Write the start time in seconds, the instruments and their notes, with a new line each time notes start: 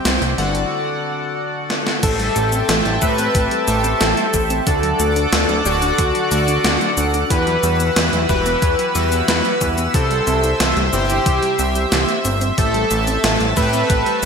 Already playing: analog synth pad G3 C4 E4, analog polysynth C4 G4 C5 E5 G5
0.05 analog synth bass C2, snare, closed hi-hat
0.22 analog synth bass C2, closed hi-hat
0.38 analog synth bass G1, analog polysynth D3 F#4 A4 D5 F#5, closed hi-hat
0.55 closed hi-hat
1.70 snare
1.87 snare
2.03 analog synth bass A1, synth arpeggio sound E3, analog polysynth A3 G4 A4 C5 E5, analog synth pad A4 E5 G5 A5, analog synth lead A4, kick, closed hi-hat, crash, shaker
2.19 synth arpeggio sound G3, closed hi-hat
2.36 analog synth bass A1, synth arpeggio sound A3, closed hi-hat, shaker
2.52 synth arpeggio sound C4, closed hi-hat, shaker
2.69 analog synth bass A1, synth arpeggio sound E3, snare, closed hi-hat, shaker
2.85 analog synth bass A1, synth arpeggio sound G3, closed hi-hat
3.02 analog synth bass A2, analog polysynth A3 C4 G4 A4 E5, synth arpeggio sound A3, analog synth lead B4, kick, shaker
3.18 synth arpeggio sound C4, closed hi-hat, shaker
3.35 analog synth bass A1, synth arpeggio sound E3, kick, closed hi-hat, shaker
3.51 synth arpeggio sound G3, closed hi-hat
3.68 analog synth bass A1, synth arpeggio sound A3, analog polysynth A3 G4 A4 C5 E5, closed hi-hat, shaker
3.84 synth arpeggio sound C4, closed hi-hat, shaker
4.01 analog synth bass A1, synth arpeggio sound E3, analog synth lead A4, snare, closed hi-hat, shaker
4.17 synth arpeggio sound G3, closed hi-hat
4.34 analog synth bass A1, synth arpeggio sound A3, kick, closed hi-hat, shaker
4.50 synth arpeggio sound C4, closed hi-hat, shaker
4.67 analog synth bass D2, analog polysynth D3 D4 F#4 A4 D5, analog synth lead A4, analog synth pad D5 F#5 D6, kick, closed hi-hat, shaker
4.83 synth arpeggio sound F#3, closed hi-hat
5.00 analog synth bass D2, synth arpeggio sound A3, closed hi-hat, shaker
5.16 synth arpeggio sound D4, closed hi-hat, shaker
5.33 analog synth bass D2, synth arpeggio sound D3, snare, closed hi-hat, shaker
5.49 analog synth bass D2, synth arpeggio sound F#3, closed hi-hat
5.65 analog synth bass D1, analog polysynth D3 D4 F#4 A4 D5, synth arpeggio sound A3, analog synth lead F#4, shaker
5.82 synth arpeggio sound D4, closed hi-hat, shaker
5.98 analog synth bass D2, synth arpeggio sound D3, kick, closed hi-hat, shaker
6.15 synth arpeggio sound F#3, closed hi-hat
6.31 analog synth bass D2, analog polysynth D3 D4 F#4 A4 D5, synth arpeggio sound A3, closed hi-hat, shaker
6.48 synth arpeggio sound D4, closed hi-hat, shaker
6.64 analog synth bass D2, synth arpeggio sound D3, snare, closed hi-hat, shaker
6.81 synth arpeggio sound F#3, closed hi-hat
6.97 analog synth bass D2, synth arpeggio sound A3, closed hi-hat, shaker
7.14 synth arpeggio sound D4, closed hi-hat, shaker
7.30 analog synth bass E2, synth arpeggio sound E3, analog polysynth E3 E4 F#4 G4 B4, analog synth lead B4, analog synth pad B4 E6, kick, closed hi-hat, shaker
7.47 synth arpeggio sound F#3, closed hi-hat
7.63 analog synth bass E2, synth arpeggio sound G3, closed hi-hat, shaker
7.80 synth arpeggio sound B3, closed hi-hat, shaker
7.96 analog synth bass E2, synth arpeggio sound E3, snare, closed hi-hat, shaker
8.13 analog synth bass E2, synth arpeggio sound F#3, closed hi-hat
8.29 analog synth bass E1, analog polysynth E3 E4 F#4 G4 B4, synth arpeggio sound G3, analog synth lead B4, kick, shaker
8.46 synth arpeggio sound B3, closed hi-hat, shaker
8.62 analog synth bass E2, synth arpeggio sound E3, kick, closed hi-hat, shaker
8.79 synth arpeggio sound F#3, closed hi-hat
8.95 analog synth bass E2, analog polysynth E3 E4 F#4 G4 B4, synth arpeggio sound G3, closed hi-hat, shaker
9.12 synth arpeggio sound B3, closed hi-hat, shaker
9.28 analog synth bass E2, synth arpeggio sound E3, analog synth lead B4, snare, closed hi-hat, shaker
9.45 synth arpeggio sound F#3, closed hi-hat
9.61 analog synth bass E2, synth arpeggio sound G3, kick, closed hi-hat, shaker
9.78 synth arpeggio sound B3, closed hi-hat, shaker
9.94 analog synth bass C2, analog polysynth C3 C4 E4 G4 C5, synth arpeggio sound E3, analog synth lead A4, analog synth pad C5 E5, kick, closed hi-hat, shaker
10.11 synth arpeggio sound G3, closed hi-hat
10.27 analog synth bass C2, synth arpeggio sound C4, closed hi-hat, shaker
10.44 synth arpeggio sound E4, closed hi-hat, shaker
10.60 analog synth bass C2, synth arpeggio sound E3, snare, closed hi-hat, shaker
10.77 analog synth bass C2, synth arpeggio sound G3, closed hi-hat
10.93 analog synth bass G1, analog polysynth C3 C4 E4 G4 C5, synth arpeggio sound C4, analog synth lead G4, shaker
11.10 synth arpeggio sound E4, closed hi-hat, shaker
11.26 analog synth bass C2, synth arpeggio sound E3, kick, closed hi-hat, shaker
11.43 synth arpeggio sound G3, closed hi-hat
11.59 analog synth bass C2, synth arpeggio sound C4, closed hi-hat, shaker
11.75 synth arpeggio sound G3, closed hi-hat, shaker
11.92 analog synth bass C2, synth arpeggio sound E3, snare, closed hi-hat, shaker
12.08 synth arpeggio sound G4, closed hi-hat
12.25 analog synth bass G1, synth arpeggio sound C4, closed hi-hat, shaker
12.41 synth arpeggio sound C4, closed hi-hat, shaker
12.58 analog synth bass A1, synth arpeggio sound E3, analog polysynth A3 G4 A4 C5 E5, analog synth lead A4, analog synth pad A4 A5, kick, closed hi-hat, shaker
12.74 synth arpeggio sound G3, closed hi-hat
12.91 analog synth bass A1, synth arpeggio sound A3, closed hi-hat, shaker
13.07 synth arpeggio sound C4, closed hi-hat, shaker
13.24 analog synth bass A1, synth arpeggio sound E3, snare, closed hi-hat, shaker
13.40 analog synth bass A1, synth arpeggio sound G3, closed hi-hat
13.57 analog synth bass A2, analog polysynth A3 C4 G4 A4 E5, synth arpeggio sound A3, analog synth lead B4, kick, shaker
13.73 synth arpeggio sound C4, closed hi-hat, shaker
13.90 analog synth bass A1, synth arpeggio sound E3, kick, closed hi-hat, shaker
14.06 synth arpeggio sound G3, closed hi-hat